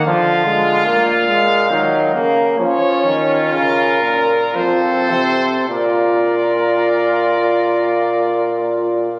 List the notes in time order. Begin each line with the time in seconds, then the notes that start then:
0.06 D3 F3 F4 F5
0.46 G#3
0.86 A#2 A#3 F5
1.28 G#3
1.69 D#3 F#3 D#4
2.14 C#3 A#3
2.58 F3 C#4 F4 C#5
3.05 D#3
3.52 C#3 A#4
4.02 A#2
4.55 F3 C4 A4 C5
5.10 C3
5.68 A#2 F4 A#4 D5